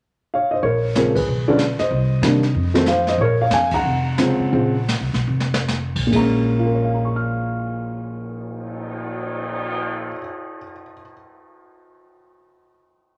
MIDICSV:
0, 0, Header, 1, 6, 480
1, 0, Start_track
1, 0, Key_signature, -5, "minor"
1, 0, Tempo, 320856
1, 944, Time_signature, 4, 2, 24, 8
1, 5748, Tempo, 344037
1, 6708, Tempo, 375940
1, 7668, Tempo, 426439
1, 8628, Tempo, 458365
1, 15999, End_track
2, 0, Start_track
2, 0, Title_t, "Upright piano"
2, 0, Program_c, 0, 0
2, 503, Note_on_c, 0, 77, 69
2, 523, Note_on_c, 0, 73, 58
2, 763, Note_on_c, 0, 75, 67
2, 781, Note_off_c, 0, 73, 0
2, 799, Note_off_c, 0, 77, 0
2, 803, Note_on_c, 0, 72, 53
2, 927, Note_off_c, 0, 75, 0
2, 938, Note_on_c, 0, 73, 80
2, 949, Note_off_c, 0, 72, 0
2, 966, Note_on_c, 0, 70, 62
2, 1385, Note_off_c, 0, 73, 0
2, 1400, Note_off_c, 0, 70, 0
2, 1431, Note_on_c, 0, 49, 53
2, 1438, Note_on_c, 0, 73, 71
2, 1439, Note_on_c, 0, 56, 49
2, 1440, Note_on_c, 0, 53, 50
2, 1449, Note_on_c, 0, 60, 59
2, 1462, Note_on_c, 0, 70, 62
2, 1701, Note_off_c, 0, 49, 0
2, 1705, Note_off_c, 0, 56, 0
2, 1706, Note_off_c, 0, 53, 0
2, 1711, Note_off_c, 0, 60, 0
2, 1726, Note_on_c, 0, 71, 74
2, 1727, Note_off_c, 0, 70, 0
2, 1744, Note_off_c, 0, 73, 0
2, 1745, Note_on_c, 0, 68, 60
2, 2182, Note_off_c, 0, 68, 0
2, 2212, Note_off_c, 0, 71, 0
2, 2212, Note_on_c, 0, 74, 82
2, 2215, Note_on_c, 0, 50, 61
2, 2220, Note_on_c, 0, 53, 61
2, 2228, Note_on_c, 0, 61, 77
2, 2229, Note_on_c, 0, 56, 61
2, 2234, Note_on_c, 0, 71, 59
2, 2365, Note_off_c, 0, 50, 0
2, 2368, Note_off_c, 0, 53, 0
2, 2371, Note_off_c, 0, 61, 0
2, 2372, Note_off_c, 0, 56, 0
2, 2666, Note_off_c, 0, 71, 0
2, 2684, Note_on_c, 0, 75, 78
2, 2701, Note_off_c, 0, 74, 0
2, 2708, Note_on_c, 0, 72, 62
2, 3337, Note_on_c, 0, 51, 50
2, 3349, Note_on_c, 0, 55, 48
2, 3351, Note_on_c, 0, 58, 49
2, 3355, Note_on_c, 0, 62, 54
2, 3612, Note_off_c, 0, 51, 0
2, 3618, Note_off_c, 0, 55, 0
2, 3619, Note_off_c, 0, 58, 0
2, 3621, Note_off_c, 0, 62, 0
2, 4061, Note_off_c, 0, 75, 0
2, 4073, Note_off_c, 0, 72, 0
2, 4100, Note_on_c, 0, 51, 58
2, 4110, Note_on_c, 0, 54, 57
2, 4112, Note_on_c, 0, 57, 57
2, 4118, Note_on_c, 0, 60, 74
2, 4266, Note_off_c, 0, 51, 0
2, 4271, Note_off_c, 0, 54, 0
2, 4272, Note_off_c, 0, 57, 0
2, 4275, Note_off_c, 0, 60, 0
2, 4306, Note_on_c, 0, 77, 82
2, 4327, Note_on_c, 0, 72, 69
2, 4597, Note_off_c, 0, 72, 0
2, 4616, Note_off_c, 0, 77, 0
2, 4620, Note_on_c, 0, 75, 84
2, 4633, Note_on_c, 0, 72, 65
2, 4779, Note_off_c, 0, 72, 0
2, 4788, Note_off_c, 0, 75, 0
2, 4804, Note_on_c, 0, 73, 94
2, 4825, Note_on_c, 0, 70, 72
2, 5088, Note_off_c, 0, 70, 0
2, 5102, Note_off_c, 0, 73, 0
2, 5108, Note_on_c, 0, 77, 82
2, 5124, Note_on_c, 0, 73, 64
2, 5267, Note_off_c, 0, 73, 0
2, 5274, Note_off_c, 0, 77, 0
2, 5291, Note_on_c, 0, 80, 94
2, 5296, Note_on_c, 0, 77, 70
2, 5566, Note_off_c, 0, 80, 0
2, 5569, Note_off_c, 0, 77, 0
2, 5597, Note_on_c, 0, 82, 98
2, 5611, Note_on_c, 0, 78, 73
2, 6218, Note_on_c, 0, 49, 59
2, 6228, Note_on_c, 0, 56, 58
2, 6229, Note_on_c, 0, 53, 54
2, 6230, Note_on_c, 0, 60, 66
2, 6671, Note_off_c, 0, 49, 0
2, 6676, Note_off_c, 0, 56, 0
2, 6677, Note_off_c, 0, 53, 0
2, 6681, Note_off_c, 0, 60, 0
2, 6692, Note_on_c, 0, 49, 53
2, 6697, Note_on_c, 0, 56, 50
2, 6698, Note_on_c, 0, 53, 52
2, 6702, Note_on_c, 0, 60, 63
2, 6967, Note_off_c, 0, 49, 0
2, 6969, Note_off_c, 0, 56, 0
2, 6970, Note_off_c, 0, 53, 0
2, 6971, Note_off_c, 0, 60, 0
2, 8095, Note_off_c, 0, 82, 0
2, 8101, Note_off_c, 0, 78, 0
2, 8551, Note_on_c, 0, 46, 58
2, 8602, Note_on_c, 0, 56, 55
2, 8645, Note_on_c, 0, 58, 52
2, 8655, Note_on_c, 0, 82, 75
2, 8685, Note_on_c, 0, 61, 67
2, 9110, Note_on_c, 0, 65, 41
2, 9180, Note_on_c, 0, 70, 38
2, 9268, Note_on_c, 0, 73, 35
2, 9367, Note_on_c, 0, 77, 31
2, 9456, Note_off_c, 0, 82, 0
2, 9472, Note_on_c, 0, 82, 33
2, 9584, Note_on_c, 0, 85, 29
2, 9704, Note_on_c, 0, 89, 29
2, 12758, Note_off_c, 0, 46, 0
2, 12806, Note_off_c, 0, 56, 0
2, 12847, Note_off_c, 0, 58, 0
2, 12887, Note_off_c, 0, 61, 0
2, 13270, Note_off_c, 0, 65, 0
2, 13340, Note_off_c, 0, 70, 0
2, 13428, Note_off_c, 0, 73, 0
2, 13527, Note_off_c, 0, 77, 0
2, 13632, Note_off_c, 0, 82, 0
2, 13744, Note_off_c, 0, 85, 0
2, 13864, Note_off_c, 0, 89, 0
2, 15999, End_track
3, 0, Start_track
3, 0, Title_t, "Upright bass"
3, 0, Program_c, 1, 32
3, 939, Note_on_c, 1, 34, 67
3, 1849, Note_off_c, 1, 34, 0
3, 1907, Note_on_c, 1, 35, 68
3, 2633, Note_off_c, 1, 35, 0
3, 2853, Note_on_c, 1, 36, 73
3, 3300, Note_off_c, 1, 36, 0
3, 3319, Note_on_c, 1, 48, 72
3, 3772, Note_off_c, 1, 48, 0
3, 3810, Note_on_c, 1, 41, 74
3, 4724, Note_off_c, 1, 41, 0
3, 4757, Note_on_c, 1, 34, 82
3, 5214, Note_off_c, 1, 34, 0
3, 5246, Note_on_c, 1, 41, 77
3, 5708, Note_off_c, 1, 41, 0
3, 5739, Note_on_c, 1, 29, 72
3, 6470, Note_off_c, 1, 29, 0
3, 6705, Note_on_c, 1, 34, 71
3, 7291, Note_off_c, 1, 34, 0
3, 7315, Note_on_c, 1, 36, 54
3, 7471, Note_off_c, 1, 36, 0
3, 7479, Note_on_c, 1, 35, 66
3, 7644, Note_off_c, 1, 35, 0
3, 7657, Note_on_c, 1, 29, 73
3, 8394, Note_off_c, 1, 29, 0
3, 8426, Note_on_c, 1, 35, 70
3, 8605, Note_off_c, 1, 35, 0
3, 8615, Note_on_c, 1, 34, 76
3, 12776, Note_off_c, 1, 34, 0
3, 15999, End_track
4, 0, Start_track
4, 0, Title_t, "Cymbal swell"
4, 8914, Note_on_c, 9, 59, 45
4, 12359, Note_off_c, 9, 59, 0
4, 15999, End_track
5, 0, Start_track
5, 0, Title_t, "Muted upright bass strokes"
5, 2689, Note_on_c, 9, 29, 39
5, 2839, Note_off_c, 9, 29, 0
5, 6517, Note_on_c, 9, 29, 40
5, 6657, Note_off_c, 9, 29, 0
5, 15999, End_track
6, 0, Start_track
6, 0, Title_t, "Drums"
6, 945, Note_on_c, 9, 25, 38
6, 947, Note_on_c, 9, 36, 27
6, 1096, Note_off_c, 9, 36, 0
6, 1426, Note_on_c, 9, 38, 55
6, 1426, Note_on_c, 9, 44, 47
6, 1576, Note_off_c, 9, 38, 0
6, 1576, Note_off_c, 9, 44, 0
6, 1731, Note_on_c, 9, 36, 76
6, 1734, Note_on_c, 9, 51, 60
6, 1880, Note_off_c, 9, 36, 0
6, 1884, Note_off_c, 9, 51, 0
6, 1906, Note_off_c, 9, 25, 0
6, 1906, Note_on_c, 9, 25, 39
6, 2373, Note_on_c, 9, 38, 56
6, 2373, Note_on_c, 9, 44, 56
6, 2523, Note_off_c, 9, 38, 0
6, 2523, Note_off_c, 9, 44, 0
6, 2679, Note_on_c, 9, 38, 34
6, 2829, Note_off_c, 9, 38, 0
6, 2852, Note_on_c, 9, 36, 31
6, 2857, Note_off_c, 9, 25, 0
6, 2857, Note_on_c, 9, 25, 41
6, 3002, Note_off_c, 9, 36, 0
6, 3334, Note_on_c, 9, 38, 61
6, 3334, Note_on_c, 9, 44, 53
6, 3484, Note_off_c, 9, 38, 0
6, 3484, Note_off_c, 9, 44, 0
6, 3637, Note_on_c, 9, 38, 33
6, 3787, Note_off_c, 9, 38, 0
6, 3809, Note_on_c, 9, 36, 29
6, 3816, Note_off_c, 9, 25, 0
6, 3816, Note_on_c, 9, 25, 42
6, 3958, Note_off_c, 9, 36, 0
6, 4115, Note_on_c, 9, 38, 53
6, 4264, Note_off_c, 9, 38, 0
6, 4282, Note_on_c, 9, 38, 54
6, 4282, Note_on_c, 9, 44, 61
6, 4432, Note_off_c, 9, 38, 0
6, 4432, Note_off_c, 9, 44, 0
6, 4592, Note_on_c, 9, 38, 37
6, 4742, Note_off_c, 9, 38, 0
6, 4758, Note_off_c, 9, 25, 0
6, 4758, Note_on_c, 9, 25, 44
6, 4764, Note_on_c, 9, 36, 30
6, 4914, Note_off_c, 9, 36, 0
6, 5248, Note_on_c, 9, 38, 59
6, 5248, Note_on_c, 9, 44, 51
6, 5397, Note_off_c, 9, 38, 0
6, 5397, Note_off_c, 9, 44, 0
6, 5547, Note_on_c, 9, 51, 66
6, 5557, Note_on_c, 9, 36, 74
6, 5697, Note_off_c, 9, 51, 0
6, 5707, Note_off_c, 9, 36, 0
6, 5739, Note_off_c, 9, 25, 0
6, 5739, Note_on_c, 9, 25, 43
6, 6219, Note_on_c, 9, 38, 59
6, 6219, Note_on_c, 9, 44, 56
6, 6358, Note_off_c, 9, 38, 0
6, 6358, Note_off_c, 9, 44, 0
6, 6703, Note_on_c, 9, 36, 29
6, 6709, Note_off_c, 9, 25, 0
6, 6709, Note_on_c, 9, 25, 44
6, 6831, Note_off_c, 9, 36, 0
6, 7160, Note_on_c, 9, 38, 55
6, 7160, Note_on_c, 9, 44, 60
6, 7288, Note_off_c, 9, 38, 0
6, 7288, Note_off_c, 9, 44, 0
6, 7488, Note_on_c, 9, 38, 35
6, 7616, Note_off_c, 9, 38, 0
6, 7804, Note_on_c, 9, 38, 49
6, 7917, Note_off_c, 9, 38, 0
6, 7958, Note_on_c, 9, 38, 73
6, 8028, Note_off_c, 9, 25, 0
6, 8071, Note_off_c, 9, 38, 0
6, 8119, Note_on_c, 9, 38, 55
6, 8119, Note_on_c, 9, 44, 56
6, 8232, Note_off_c, 9, 38, 0
6, 8232, Note_off_c, 9, 44, 0
6, 8427, Note_on_c, 9, 49, 61
6, 8432, Note_on_c, 9, 36, 61
6, 8539, Note_off_c, 9, 49, 0
6, 8545, Note_off_c, 9, 36, 0
6, 8615, Note_on_c, 9, 36, 48
6, 8615, Note_on_c, 9, 49, 57
6, 8720, Note_off_c, 9, 49, 0
6, 8721, Note_off_c, 9, 36, 0
6, 15999, End_track
0, 0, End_of_file